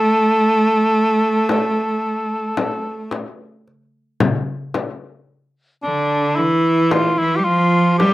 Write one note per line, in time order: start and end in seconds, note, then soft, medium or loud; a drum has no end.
0.00 3.13 A3 medium
0.00 3.13 A4 medium
0.43 darbuka ka soft
1.49 darbuka tek medium
1.49 frame drum medium
2.57 darbuka tek medium
2.57 frame drum medium
3.11 darbuka tek medium
3.11 frame drum medium
3.68 darbuka ka soft
4.20 frame drum loud
4.20 darbuka dum medium
4.74 darbuka tek medium
4.74 frame drum medium
5.83 6.40 D3 medium
5.83 6.37 D4 medium
6.36 7.19 E3 medium
6.36 6.94 E4 medium
6.91 7.20 F4 medium
6.91 darbuka tek medium
6.91 frame drum medium
7.18 7.40 E3 medium
7.18 7.38 E4 medium
7.36 7.47 G3 medium
7.36 7.46 G4 medium
7.44 8.03 F3 loud
7.44 7.98 F4 medium
7.98 8.14 G3 medium
7.98 8.14 G4 medium
7.98 darbuka tek medium
7.98 frame drum medium